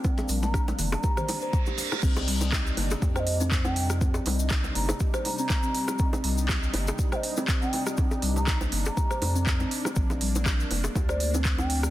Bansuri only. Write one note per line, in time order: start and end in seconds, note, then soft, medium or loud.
0.43 0.65 A#5 medium
0.92 1.61 A#5 loud
3.16 3.37 D#5 medium
3.16 3.21 G5 medium
3.65 3.87 G5 medium
4.75 4.98 A#5 medium
5.25 5.36 A#5 medium
5.38 6.08 A#5 loud
7.12 7.34 D#5 medium
7.12 7.17 G5 medium
7.62 7.84 G5 medium
8.36 8.58 A#5 medium
8.86 9.55 A#5 loud
11.09 11.31 D5 medium
11.58 11.80 G5 medium